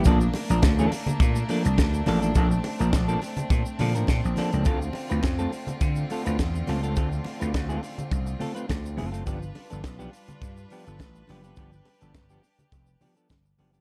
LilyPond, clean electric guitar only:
\new Staff \with { instrumentName = "Clean electric guitar" } { \time 4/4 \key d \dorian \tempo 4 = 104 <f bes d' a'>16 r8 <f bes d' bes'>16 r16 <f bes d' a'>16 r4 <f bes d' a'>16 r8. <f bes d' a'>16 <f bes d' a'>16 | <f bes d' a'>16 r8 <f bes d' bes'>16 r16 <f bes d' a'>16 r4 <f bes d' a'>16 <f bes d' bes'>16 r8 <f bes d' a'>16 <f bes d' a'>16 | <a c' f' a'>16 r8 <a c' f' b'>16 r16 <a c' f' a'>16 r4 <a c' f' a'>16 <a c' f' b'>16 r8 <a c' f' a'>16 <a c' f' a'>16 | <a c' f' a'>16 r8 <a c' f' b'>16 r16 <a c' f' a'>16 r4 <a c' f' a'>16 <a c' f' b'>16 r8 <a c' f' a'>16 <a c' f' a'>16 |
<f b d' g'>16 r8 <f b d' a'>16 r16 <f b d' g'>16 r4 <f b d' g'>16 <f b d' a'>16 r8 <f b d' g'>16 <f b d' g'>16 | <f b d' g'>16 r8 <f b d' a'>16 r16 <f b d' g'>16 r4 <f b d' g'>16 <f b d' a'>16 r8 <f b d' g'>16 <f b d' g'>16 | }